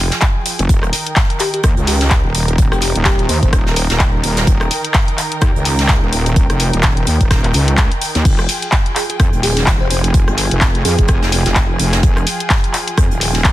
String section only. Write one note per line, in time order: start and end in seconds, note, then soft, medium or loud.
0.00 0.65 F3 medium
0.00 0.65 F4 medium
0.00 0.65 G#4 medium
0.00 0.65 G5 medium
0.69 8.21 D#3 medium
0.69 8.21 D#4 medium
0.69 8.21 A#4 medium
0.69 13.52 G5 medium
8.25 13.52 F3 medium
8.25 13.52 F4 medium
8.25 13.52 G#4 medium